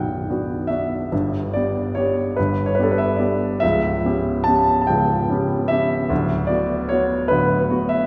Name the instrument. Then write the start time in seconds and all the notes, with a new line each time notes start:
grand piano
Already playing: B0 B1 B3 D4 F#4 D5 F#5 G5
0.30 B3 D4 F#4
0.67 B3 D4 F#4 E5
1.12 G1 G2
1.53 B3 D4 G4 D5
1.95 B3 D4 G4 C#5
2.36 G1 G2 B4
2.66 C#5
2.75 B4
2.79 B3 D4 G4 A4
2.91 B4
2.98 E5
3.16 B3 D4 G4 D5
3.60 C#1 C#2 E5
4.05 B3 C#4 G4
4.44 B3 C#4 A5
4.48 G4
4.81 A5
4.87 C#1 C#2 G5
5.30 B3 C#4 G4
5.68 B3 C#4 G4 E5
6.10 D1 D2
6.47 B3 F#4 D5
6.89 B3 F#4 C#5
7.28 D1 D2 B4
7.70 B3 F#4
7.89 E5